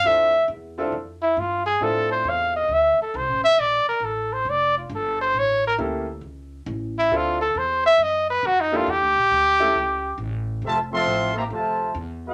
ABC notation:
X:1
M:4/4
L:1/8
Q:"Swing" 1/4=136
K:Dm
V:1 name="Trumpet section"
z8 | z8 | z8 | z8 |
z8 | z8 | [Fcea] [Aefc']2 [Gceb] [Fcea]2 z [Fceg] |]
V:2 name="Trumpet"
e2 z3 E F ^G | A c f _e =e A c e | d B A c d F A c | ^c B z4 z E |
F A c e _e =B (3_G _E F | G6 z2 | z8 |]
V:3 name="Upright piano"
[CDEFA] z2 [CDEFA] z4 | [CDEFA]4- [CDEFA] z3 | z8 | z2 [B,^CEGA] z4 z |
[CDEFA] z6 [B,DEGA] | z3 [A,^CEGA] z4 | z8 |]
V:4 name="Trombone section"
z8 | z8 | z8 | z8 |
z8 | z8 | [C,F,A,] [F,A,C]2 B, [C,F,A,]2 z [A,CG] |]
V:5 name="Upright bass" clef=bass
D,,2 E,,2 F,,2 G,,2 | A,,2 E,,2 D,, z (3C,, A,,, F,,, | B,,, z A,,,2 F,,,2 G,,,2 | A,,,2 D,,2 ^C,,2 A,,,2 |
D,,2 E,,2 _G,,2 F,,2 | (3E,, D,, B,,, D,,2 ^C,,2 A,,,2 | F,,,2 A,,,2 D,,2 E,,2 |]